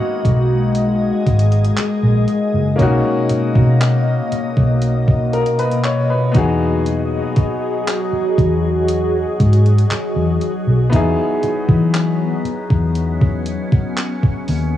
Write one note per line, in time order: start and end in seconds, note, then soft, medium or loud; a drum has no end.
0.00 2.75 G#3 medium
0.00 2.73 A#3 medium
0.00 2.74 B3 medium
0.00 2.76 D#4 medium
0.00 0.74 F#4 medium
0.00 2.77 F#4 medium
0.00 2.75 D#5 medium
0.25 1.10 B1 medium
0.25 kick medium
0.25 closed hi-hat soft
0.75 2.77 G#4 medium
0.75 closed hi-hat medium
1.26 1.69 G#1 medium
1.26 kick medium
1.26 closed hi-hat medium
1.39 closed hi-hat medium
1.52 closed hi-hat medium
1.65 closed hi-hat medium
1.77 muted fingered electric bass stroke soft
1.77 clap loud
1.77 closed hi-hat medium
2.03 2.24 A#1 medium
2.28 closed hi-hat medium
2.54 2.75 F#1 medium
2.76 3.00 B1 loud
2.76 6.31 B2 medium
2.76 6.29 A#3 medium
2.76 6.31 A#3 medium
2.76 6.30 C#4 medium
2.76 12.91 D#5 loud
2.76 kick loud
2.76 closed hi-hat medium
2.80 6.31 D#4 medium
2.80 6.33 F#4 medium
3.29 muted fingered electric bass stroke soft
3.29 closed hi-hat medium
3.55 4.20 B2 medium
3.55 kick loud
3.81 clap loud
3.81 closed hi-hat medium
4.32 muted fingered electric bass stroke soft
4.32 closed hi-hat medium
4.57 5.43 B1 medium
4.57 kick medium
4.82 closed hi-hat medium
5.08 kick medium
5.33 5.57 A#4 medium
5.33 closed hi-hat medium
5.46 closed hi-hat medium
5.59 5.83 B4 medium
5.59 closed hi-hat medium
5.71 closed hi-hat medium
5.84 6.08 C#5 medium
5.84 clap loud
5.84 closed hi-hat medium
6.10 6.58 B4 medium
6.32 7.21 E2 medium
6.32 14.77 F#3 medium
6.32 10.36 B3 medium
6.32 10.37 D#4 medium
6.32 10.88 F#4 medium
6.32 10.88 G#4 medium
6.32 kick loud
6.32 closed hi-hat medium
6.36 10.38 F#4 medium
6.36 10.39 G#4 medium
6.86 closed hi-hat medium
7.36 kick loud
7.36 closed hi-hat medium
7.88 clap loud
7.88 closed hi-hat medium
8.13 muted fingered electric bass stroke soft
8.38 9.24 E2 medium
8.38 kick medium
8.38 closed hi-hat medium
8.89 closed hi-hat medium
9.40 9.83 G#2 medium
9.40 kick medium
9.40 closed hi-hat medium
9.53 closed hi-hat medium
9.66 closed hi-hat medium
9.78 closed hi-hat medium
9.91 muted fingered electric bass stroke soft
9.91 clap loud
9.91 closed hi-hat medium
10.16 10.38 E2 medium
10.41 closed hi-hat medium
10.67 10.89 B1 medium
10.90 11.14 E2 loud
10.90 14.77 B3 medium
10.90 14.77 D#4 medium
10.90 kick loud
10.90 closed hi-hat medium
10.94 14.77 E4 medium
10.94 14.77 G#4 medium
11.43 muted fingered electric bass stroke soft
11.43 closed hi-hat medium
11.69 12.33 E3 medium
11.69 kick loud
11.94 clap loud
11.94 closed hi-hat medium
12.45 muted fingered electric bass stroke soft
12.45 closed hi-hat soft
12.70 13.56 E2 medium
12.70 kick loud
12.95 14.77 C#4 medium
12.95 closed hi-hat medium
13.21 kick medium
13.46 closed hi-hat medium
13.72 kick loud
13.97 clap loud
13.97 closed hi-hat medium
14.23 kick loud
14.48 14.77 D#2 medium
14.48 open hi-hat medium